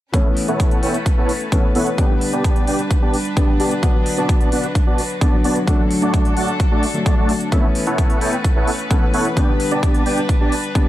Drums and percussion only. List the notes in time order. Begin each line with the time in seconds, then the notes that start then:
0.14 kick, closed hi-hat
0.37 open hi-hat
0.48 closed hi-hat
0.60 kick, closed hi-hat
0.71 closed hi-hat
0.83 open hi-hat
0.94 closed hi-hat
1.06 kick, closed hi-hat
1.29 open hi-hat
1.41 closed hi-hat
1.52 kick, closed hi-hat
1.75 open hi-hat
1.87 closed hi-hat
1.98 kick, closed hi-hat
2.21 open hi-hat
2.33 closed hi-hat
2.44 kick, closed hi-hat
2.56 closed hi-hat
2.67 open hi-hat
2.79 closed hi-hat
2.91 kick, closed hi-hat
3.14 open hi-hat
3.25 closed hi-hat
3.37 kick, closed hi-hat
3.60 open hi-hat
3.71 closed hi-hat
3.83 kick, closed hi-hat
4.06 open hi-hat
4.17 closed hi-hat
4.29 kick, closed hi-hat
4.41 closed hi-hat
4.52 open hi-hat
4.64 closed hi-hat
4.75 kick, closed hi-hat
4.98 open hi-hat
5.10 closed hi-hat
5.21 kick, closed hi-hat
5.44 open hi-hat
5.56 closed hi-hat
5.67 kick, closed hi-hat
5.91 open hi-hat
6.02 closed hi-hat
6.14 kick, closed hi-hat
6.25 closed hi-hat
6.37 open hi-hat
6.48 closed hi-hat
6.60 kick, closed hi-hat
6.83 open hi-hat
6.94 closed hi-hat
7.06 kick, closed hi-hat
7.29 open hi-hat
7.41 closed hi-hat
7.52 kick, closed hi-hat
7.75 open hi-hat
7.87 closed hi-hat
7.98 kick, closed hi-hat
8.10 closed hi-hat
8.21 open hi-hat
8.33 closed hi-hat
8.44 kick, closed hi-hat
8.67 open hi-hat
8.79 closed hi-hat
8.91 kick, closed hi-hat
9.14 open hi-hat
9.25 closed hi-hat
9.37 kick, closed hi-hat
9.60 open hi-hat
9.71 closed hi-hat
9.83 kick, closed hi-hat
9.94 closed hi-hat
10.06 open hi-hat
10.18 closed hi-hat
10.29 kick, closed hi-hat
10.52 open hi-hat
10.64 closed hi-hat
10.75 kick, closed hi-hat